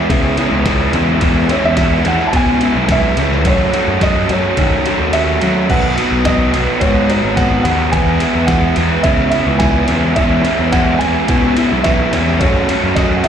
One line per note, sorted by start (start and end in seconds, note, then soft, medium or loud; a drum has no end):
0.00 0.88 E5 medium
0.10 0.46 C#3 loud
0.10 0.36 E3 loud
0.10 0.37 G#3 loud
0.10 0.37 B3 loud
0.10 0.37 E4 loud
0.10 kick loud
0.10 ride loud
0.37 0.64 E3 medium
0.37 0.65 G#3 medium
0.37 0.65 B3 medium
0.37 0.65 E4 medium
0.37 ride medium
0.51 0.88 C#2 loud
0.65 0.92 E3 medium
0.65 0.92 G#3 medium
0.65 0.92 B3 loud
0.65 0.92 E4 loud
0.65 kick loud
0.65 snare loud
0.65 ride loud
0.93 1.17 E2 loud
0.93 1.20 E3 loud
0.93 1.20 G#3 loud
0.93 1.22 C#4 loud
0.93 1.21 E4 loud
0.93 ride medium
1.21 1.45 E2 loud
1.21 1.49 E3 loud
1.21 1.49 G#3 loud
1.21 1.50 C#4 loud
1.21 1.50 E4 medium
1.21 kick loud
1.21 ride loud
1.49 1.77 E3 medium
1.49 1.77 G#3 medium
1.49 1.78 C#4 loud
1.49 1.78 E4 loud
1.49 1.64 C#5 medium
1.49 ride medium
1.64 2.00 E2 medium
1.64 2.04 E5 loud
1.77 2.05 E3 medium
1.77 2.05 G#3 medium
1.77 2.07 C#4 medium
1.77 2.06 E4 medium
1.77 kick loud
1.77 snare loud
1.77 ride loud
2.05 2.18 E2 loud
2.05 2.32 E3 medium
2.05 2.33 G#3 medium
2.05 2.34 C#4 medium
2.05 2.34 E4 medium
2.05 2.26 F#5 loud
2.05 ride medium
2.19 snare soft
2.27 2.34 A5 medium
2.33 2.69 B2 loud
2.33 2.61 E3 medium
2.33 2.61 G#3 loud
2.33 2.62 C#4 loud
2.33 2.62 E4 loud
2.33 2.93 G#5 loud
2.33 kick loud
2.33 ride loud
2.61 2.89 E3 medium
2.61 2.89 G#3 medium
2.61 2.90 C#4 medium
2.61 2.90 E4 loud
2.61 ride medium
2.75 3.12 B1 loud
2.89 3.16 E3 medium
2.89 3.17 G#3 medium
2.89 3.18 C#4 medium
2.89 3.18 E4 loud
2.89 3.43 E5 loud
2.89 kick loud
2.89 snare loud
2.89 ride loud
3.17 3.45 C#2 loud
3.17 3.44 E3 medium
3.17 3.44 G#3 medium
3.17 3.46 C#4 medium
3.17 3.45 E4 medium
3.17 ride medium
3.31 snare soft
3.45 3.69 F#2 loud
3.45 3.73 F#3 medium
3.45 3.73 A3 medium
3.45 3.74 C#4 loud
3.45 3.75 F#4 loud
3.45 3.99 C#5 medium
3.45 kick loud
3.45 ride loud
3.74 4.01 F#3 medium
3.74 4.01 A3 medium
3.74 4.02 C#4 medium
3.74 4.02 F#4 medium
3.74 ride medium
3.88 4.24 F#2 medium
4.01 4.30 F#3 medium
4.01 4.29 A3 medium
4.01 4.30 C#4 medium
4.01 4.31 F#4 medium
4.01 4.28 D#5 loud
4.01 kick loud
4.01 snare loud
4.01 ride loud
4.29 4.42 F#2 loud
4.29 4.57 F#3 medium
4.29 4.57 A3 medium
4.29 4.58 C#4 loud
4.29 4.58 F#4 loud
4.29 5.17 C#5 medium
4.29 ride medium
4.57 4.94 D#3 loud
4.57 4.85 F#3 loud
4.57 4.85 A3 medium
4.57 4.86 C#4 loud
4.57 4.86 F#4 medium
4.57 kick loud
4.57 ride loud
4.86 5.13 F#3 medium
4.86 5.13 A3 medium
4.86 5.14 C#4 medium
4.86 5.14 F#4 medium
4.86 ride medium
5.00 5.36 D#2 loud
5.13 5.41 F#3 medium
5.13 5.41 A3 medium
5.13 5.42 C#4 medium
5.13 5.42 F#4 loud
5.13 5.71 E5 loud
5.13 ride medium
5.41 5.68 F#3 medium
5.41 5.71 F#3 loud
5.41 5.68 A3 medium
5.41 5.69 C#4 medium
5.41 5.69 F#4 loud
5.41 ride medium
5.69 5.94 B1 loud
5.69 5.96 B2 loud
5.69 5.96 D#3 loud
5.69 5.97 F#3 loud
5.69 5.98 B3 loud
5.69 5.97 F#4 loud
5.69 6.22 F#5 loud
5.69 kick loud
5.69 crash loud
5.97 6.24 B2 medium
5.97 6.24 D#3 medium
5.97 6.25 F#3 medium
5.97 6.26 B3 medium
5.97 6.25 F#4 medium
5.97 ride medium
6.12 6.48 B1 medium
6.25 6.53 B2 medium
6.25 6.53 D#3 medium
6.25 6.53 F#3 medium
6.25 6.54 B3 medium
6.25 6.54 F#4 medium
6.25 6.83 D#5 loud
6.25 kick loud
6.25 snare loud
6.25 ride loud
6.53 6.65 B1 loud
6.53 6.80 B2 medium
6.53 6.81 D#3 medium
6.53 6.81 F#3 medium
6.53 6.81 B3 medium
6.53 6.82 F#4 medium
6.53 ride medium
6.80 7.17 G#2 medium
6.80 7.08 B2 medium
6.80 7.08 D#3 medium
6.80 7.09 F#3 loud
6.80 7.09 B3 loud
6.80 7.09 F#4 loud
6.80 7.08 C#5 medium
6.80 kick loud
6.80 ride loud
7.09 7.35 B2 medium
7.09 7.35 D#3 medium
7.09 7.36 F#3 medium
7.09 7.36 B3 medium
7.09 7.37 F#4 medium
7.09 7.39 C#5 medium
7.09 ride medium
7.23 7.59 G#1 loud
7.36 7.63 B2 medium
7.36 7.64 D#3 medium
7.36 7.64 F#3 medium
7.36 7.65 B3 medium
7.36 7.65 F#4 medium
7.36 7.62 F#5 loud
7.36 kick loud
7.36 snare loud
7.36 ride loud
7.63 7.93 D#2 loud
7.63 7.92 B2 medium
7.63 7.92 D#3 medium
7.63 7.92 F#3 medium
7.63 7.92 B3 loud
7.63 7.92 F#4 loud
7.63 7.90 F#5 medium
7.63 ride medium
7.92 8.17 E2 loud
7.92 8.20 E3 medium
7.92 8.20 G#3 medium
7.92 8.20 B3 medium
7.92 8.21 E4 loud
7.92 8.51 G#5 loud
7.92 kick loud
7.92 ride loud
8.20 8.48 E3 medium
8.20 8.48 G#3 medium
8.20 8.48 B3 medium
8.20 8.49 E4 medium
8.20 ride medium
8.35 8.71 E2 medium
8.47 8.77 E3 medium
8.47 8.77 G#3 medium
8.47 8.77 B3 medium
8.47 8.77 E4 medium
8.47 9.00 F#5 loud
8.47 kick loud
8.47 snare loud
8.47 ride loud
8.76 8.89 E2 loud
8.76 9.04 E3 medium
8.76 9.04 G#3 medium
8.76 9.05 B3 medium
8.76 9.05 E4 loud
8.76 ride medium
9.03 9.41 C#3 medium
9.03 9.32 E3 loud
9.03 9.32 G#3 loud
9.03 9.33 B3 loud
9.03 9.33 E4 loud
9.03 9.29 E5 loud
9.03 kick loud
9.03 ride loud
9.30 9.60 E3 medium
9.30 9.60 G#3 medium
9.30 9.61 B3 medium
9.30 9.61 E4 loud
9.30 9.58 E5 medium
9.30 ride medium
9.47 9.83 C#2 loud
9.59 9.88 E3 medium
9.59 9.88 G#3 medium
9.59 9.88 B3 loud
9.59 9.88 E4 medium
9.59 10.12 G#5 loud
9.59 kick loud
9.59 snare loud
9.59 ride medium
9.88 10.13 E2 loud
9.88 10.16 E3 loud
9.88 10.17 G#3 loud
9.88 10.17 C#4 loud
9.88 10.17 E4 loud
9.88 ride medium
10.15 10.41 E2 loud
10.15 10.44 E3 medium
10.15 10.45 G#3 loud
10.15 10.45 C#4 medium
10.15 10.45 E4 loud
10.15 10.68 E5 loud
10.15 kick loud
10.15 ride medium
10.45 10.72 E3 medium
10.45 10.72 G#3 medium
10.45 10.73 C#4 medium
10.45 10.73 E4 loud
10.45 ride medium
10.59 10.95 E2 medium
10.72 11.00 E3 medium
10.72 11.00 G#3 medium
10.72 11.00 C#4 loud
10.72 11.01 E4 loud
10.72 10.91 F#5 loud
10.72 kick loud
10.72 snare loud
10.72 ride loud
10.92 11.00 F#5 medium
10.99 11.13 E2 loud
10.99 11.27 E3 medium
10.99 11.28 G#3 loud
10.99 11.28 C#4 loud
10.99 11.28 E4 loud
10.99 11.86 G#5 loud
10.99 ride medium
11.28 11.65 B2 loud
11.28 11.56 E3 loud
11.28 11.56 G#3 medium
11.28 11.57 C#4 loud
11.28 11.57 E4 loud
11.28 kick loud
11.28 ride loud
11.57 11.84 E3 medium
11.57 11.84 G#3 medium
11.57 11.84 C#4 medium
11.57 11.85 E4 medium
11.57 ride medium
11.72 12.07 B1 loud
11.83 12.12 E3 medium
11.83 12.12 G#3 medium
11.83 12.13 C#4 loud
11.83 12.13 E4 medium
11.83 12.42 E5 medium
11.83 kick loud
11.83 snare loud
11.83 ride loud
12.13 12.41 E2 loud
12.13 12.39 E3 medium
12.13 12.40 G#3 medium
12.13 12.40 C#4 medium
12.13 12.40 E4 medium
12.13 ride medium
12.26 snare soft
12.39 12.65 F#2 loud
12.39 12.68 F#3 medium
12.39 12.69 A3 loud
12.39 12.69 C#4 loud
12.39 12.69 F#4 loud
12.39 12.98 C#5 medium
12.39 kick loud
12.39 ride loud
12.69 12.96 F#3 medium
12.69 12.97 A3 medium
12.69 12.97 C#4 medium
12.69 12.97 F#4 medium
12.69 ride medium
12.84 13.25 F#2 medium
12.95 13.24 F#3 medium
12.95 13.24 A3 medium
12.95 13.25 C#4 loud
12.95 13.25 F#4 medium
12.95 13.15 D#5 medium
12.95 kick loud
12.95 snare loud
12.95 ride loud
13.17 13.24 F#5 medium
13.24 13.28 F#3 medium
13.24 13.28 E5 medium
13.24 ride medium